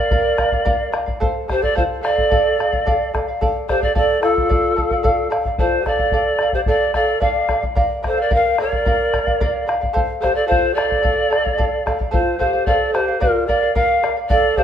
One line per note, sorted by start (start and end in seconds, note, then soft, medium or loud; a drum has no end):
0.00 0.95 A#4 medium
0.00 0.10 D5 soft
0.00 0.94 D5 medium
0.00 0.10 F5 medium
0.11 0.36 A#4 medium
0.11 0.37 D5 medium
0.11 0.37 F5 medium
0.11 bombo low medium
0.37 0.52 A#4 medium
0.37 0.52 D5 medium
0.37 0.51 F5 medium
0.37 bombo rim medium
0.37 bombo low medium
0.52 0.64 D5 soft
0.52 0.64 F5 medium
0.52 bombo low medium
0.65 0.91 A#4 medium
0.65 0.92 D5 medium
0.65 0.93 F5 loud
0.65 bombo low medium
0.92 1.07 A#4 medium
0.92 1.06 D5 medium
0.92 1.05 F5 medium
0.92 bombo rim medium
1.06 1.20 D5 soft
1.06 1.20 F5 medium
1.06 bombo low medium
1.20 1.47 A4 medium
1.20 1.48 C5 medium
1.20 1.48 F5 medium
1.20 bombo low medium
1.48 1.64 G4 medium
1.48 1.62 A4 medium
1.48 1.61 C5 medium
1.48 1.64 C5 medium
1.48 1.60 F5 medium
1.48 bombo rim soft
1.48 bombo low medium
1.61 1.76 A4 medium
1.61 1.74 C5 soft
1.61 1.76 D5 loud
1.61 1.75 F5 soft
1.61 bombo low medium
1.75 1.83 F4 medium
1.75 2.00 A4 medium
1.75 2.01 C5 medium
1.75 1.83 C5 medium
1.75 2.02 F5 medium
1.75 bombo low medium
2.01 2.16 A4 medium
2.01 3.09 A4 medium
2.01 2.16 C5 medium
2.01 3.09 D5 loud
2.01 2.14 F5 medium
2.01 bombo rim medium
2.15 2.30 C5 soft
2.15 2.30 F5 medium
2.15 bombo low medium
2.30 2.58 A4 medium
2.30 2.58 D5 medium
2.30 2.58 F5 medium
2.30 bombo low medium
2.59 2.72 A4 medium
2.59 2.72 D5 medium
2.59 2.71 F5 medium
2.59 bombo rim soft
2.72 2.85 D5 soft
2.72 2.85 F5 medium
2.72 bombo low medium
2.86 3.12 A4 medium
2.86 3.13 D5 medium
2.86 3.13 F5 medium
2.86 bombo low medium
3.14 3.27 A4 medium
3.14 3.27 D5 medium
3.14 3.27 F5 medium
3.14 bombo rim medium
3.14 bombo low medium
3.28 3.41 D5 soft
3.28 3.41 F5 medium
3.41 3.67 A4 medium
3.41 3.68 D5 medium
3.41 3.69 F5 medium
3.41 bombo low medium
3.68 3.85 G4 medium
3.68 3.82 A4 medium
3.68 3.84 C5 medium
3.68 3.82 D5 medium
3.68 3.80 F5 medium
3.68 bombo rim medium
3.68 bombo low soft
3.81 3.95 A4 medium
3.81 3.95 D5 loud
3.81 3.94 D5 soft
3.81 3.94 F5 medium
3.81 bombo low medium
3.95 4.19 A4 medium
3.95 4.21 A4 medium
3.95 4.20 D5 medium
3.95 4.21 D5 medium
3.95 4.21 F5 medium
3.95 bombo low medium
4.21 5.28 F4 medium
4.21 4.35 A4 medium
4.21 5.28 A4 medium
4.21 4.36 D5 medium
4.21 4.34 F5 medium
4.21 bombo rim medium
4.35 4.48 D5 soft
4.35 4.49 F5 medium
4.35 bombo low medium
4.49 4.75 A4 medium
4.49 4.76 D5 medium
4.49 4.77 F5 medium
4.49 bombo low medium
4.76 4.90 A4 medium
4.76 4.90 D5 medium
4.76 4.90 F5 medium
4.76 bombo low medium
4.91 5.03 D5 soft
4.91 5.03 F5 medium
4.91 bombo low medium
5.03 5.29 A4 medium
5.03 5.30 D5 medium
5.03 5.30 F5 loud
5.03 bombo low medium
5.30 5.44 A4 medium
5.30 5.45 D5 medium
5.30 5.45 F5 medium
5.30 bombo rim medium
5.45 5.58 D5 soft
5.45 5.59 F5 medium
5.45 bombo low medium
5.58 5.89 F4 medium
5.58 5.84 A4 medium
5.58 5.88 C5 medium
5.58 5.85 D5 medium
5.58 5.86 F5 medium
5.58 bombo low medium
5.85 5.99 A4 medium
5.85 6.54 A4 medium
5.85 5.99 D5 medium
5.85 6.54 D5 medium
5.85 5.98 F5 medium
5.85 bombo rim soft
5.85 bombo low soft
5.99 6.13 D5 soft
5.99 6.12 F5 medium
5.99 bombo low medium
6.12 6.39 A4 medium
6.12 6.40 D5 medium
6.12 6.41 F5 medium
6.12 bombo low medium
6.39 6.54 A4 medium
6.39 6.54 D5 medium
6.39 6.54 F5 medium
6.39 bombo rim medium
6.53 6.60 G4 medium
6.53 6.60 C5 medium
6.53 6.67 D5 soft
6.53 6.68 F5 medium
6.53 bombo low medium
6.66 6.92 A4 medium
6.66 6.93 A4 medium
6.66 6.93 D5 loud
6.66 6.93 D5 medium
6.66 6.94 F5 medium
6.66 bombo low medium
6.94 7.08 A4 medium
6.94 7.24 A4 medium
6.94 7.23 D5 medium
6.94 7.08 D5 medium
6.94 7.06 F5 medium
6.94 bombo rim soft
6.94 bombo low soft
7.07 7.20 D5 soft
7.07 7.21 F5 soft
7.21 7.47 A4 medium
7.21 7.48 D5 medium
7.21 7.63 D5 medium
7.21 7.63 F5 medium
7.21 7.49 F5 medium
7.21 bombo low medium
7.49 7.63 A4 medium
7.49 7.63 D5 medium
7.49 7.61 F5 medium
7.49 bombo rim medium
7.49 bombo low medium
7.63 7.75 D5 soft
7.63 7.75 F5 soft
7.63 bombo low medium
7.75 8.01 A#4 medium
7.75 8.02 D5 medium
7.75 8.03 F5 medium
7.75 bombo low medium
8.03 8.17 A#4 medium
8.03 8.17 D5 medium
8.03 8.16 F5 medium
8.03 bombo rim soft
8.03 bombo low soft
8.07 8.23 A4 medium
8.07 8.23 C5 medium
8.17 8.30 D5 soft
8.17 8.33 D5 medium
8.17 8.30 F5 medium
8.21 8.33 A#4 medium
8.30 8.57 A#4 medium
8.30 8.58 D5 medium
8.30 8.59 F5 medium
8.30 bombo low medium
8.34 8.58 A#4 medium
8.34 8.58 F5 loud
8.58 8.72 A#4 medium
8.58 9.64 A#4 medium
8.58 8.72 D5 medium
8.58 9.65 D5 medium
8.58 8.70 F5 medium
8.58 bombo rim medium
8.72 8.85 D5 soft
8.72 8.86 F5 medium
8.72 bombo low medium
8.85 9.12 A#4 medium
8.85 9.13 D5 medium
8.85 9.13 F5 medium
8.85 bombo low medium
9.13 9.27 A#4 medium
9.13 9.27 D5 medium
9.13 9.25 F5 medium
9.13 bombo rim medium
9.13 bombo low soft
9.27 9.40 D5 soft
9.27 9.40 F5 medium
9.27 bombo low medium
9.40 9.65 A#4 medium
9.40 9.66 D5 medium
9.40 9.67 F5 loud
9.40 bombo low medium
9.67 9.81 A#4 medium
9.67 9.81 D5 medium
9.67 9.80 F5 medium
9.67 bombo rim medium
9.81 9.94 D5 soft
9.81 9.93 F5 medium
9.81 bombo low medium
9.93 10.19 A4 medium
9.93 10.21 C5 medium
9.93 10.21 F5 loud
9.93 bombo low medium
10.21 10.35 G4 medium
10.21 10.35 A4 medium
10.21 10.34 C5 medium
10.21 10.35 C5 medium
10.21 10.32 F5 medium
10.21 bombo rim soft
10.21 bombo low soft
10.33 10.48 A4 medium
10.33 10.47 C5 soft
10.33 10.47 D5 medium
10.33 10.47 F5 medium
10.47 10.75 F4 medium
10.47 10.74 A4 medium
10.47 10.75 C5 medium
10.47 10.76 F5 medium
10.52 bombo low medium
10.74 11.84 A4 medium
10.74 10.90 A4 medium
10.74 10.89 C5 medium
10.74 11.84 D5 loud
10.74 10.87 F5 medium
10.78 bombo rim medium
10.88 11.04 C5 soft
10.88 11.02 F5 soft
10.88 bombo low medium
11.02 11.29 A4 medium
11.02 11.29 D5 medium
11.02 11.30 F5 medium
11.02 bombo low medium
11.30 11.44 A4 medium
11.30 11.44 D5 medium
11.30 11.43 F5 medium
11.30 bombo rim medium
11.44 11.57 D5 soft
11.44 11.57 F5 soft
11.44 bombo low medium
11.58 11.85 A4 medium
11.58 11.85 D5 medium
11.58 11.85 F5 medium
11.58 bombo low medium
11.86 11.99 A4 medium
11.86 11.99 D5 medium
11.86 11.97 F5 medium
11.86 bombo rim medium
11.86 bombo low medium
11.99 12.11 D5 soft
11.99 12.11 F5 medium
11.99 bombo low medium
12.11 12.38 F4 medium
12.11 12.38 A4 medium
12.11 12.38 C5 medium
12.11 12.37 C5 medium
12.11 12.39 F5 medium
12.11 bombo low medium
12.38 12.53 A4 medium
12.38 12.44 A4 medium
12.38 12.67 C5 medium
12.38 12.53 C5 medium
12.38 12.52 F5 medium
12.38 bombo low medium
12.43 12.70 G4 medium
12.53 12.66 C5 soft
12.53 12.66 F5 medium
12.66 12.93 A4 medium
12.66 12.74 A#4 medium
12.66 12.93 C5 medium
12.66 12.95 D5 medium
12.66 12.94 F5 medium
12.66 bombo low medium
12.73 12.96 A4 medium
12.93 13.21 G4 medium
12.93 13.07 A4 medium
12.93 13.20 C5 medium
12.93 13.08 C5 medium
12.93 13.07 F5 medium
12.93 bombo rim medium
13.08 13.22 C5 medium
13.08 13.20 F5 medium
13.20 13.49 F4 medium
13.20 13.47 A#4 medium
13.20 13.48 A#4 loud
13.20 13.48 D5 medium
13.20 13.48 F5 medium
13.20 bombo low medium
13.47 13.74 A#4 medium
13.47 13.62 A#4 medium
13.47 13.74 D5 medium
13.47 13.62 D5 medium
13.47 13.61 F5 medium
13.47 bombo low medium
13.62 13.74 D5 soft
13.62 13.75 F5 medium
13.75 14.13 A#4 medium
13.75 14.02 A#4 medium
13.75 14.02 D5 medium
13.75 14.13 F5 loud
13.75 14.03 F5 medium
13.75 bombo low medium
14.03 14.16 A#4 medium
14.03 14.16 D5 medium
14.03 14.15 F5 medium
14.03 bombo rim medium
14.17 14.28 D5 soft
14.17 14.29 F5 medium
14.28 14.56 A4 medium
14.28 14.59 A4 medium
14.28 14.58 D5 loud
14.28 14.56 D5 medium
14.28 14.57 F5 loud
14.28 bombo low medium
14.57 14.63 G4 medium
14.57 14.63 A4 medium
14.57 14.63 C5 loud
14.57 14.63 D5 medium
14.57 14.63 F5 medium
14.57 bombo low medium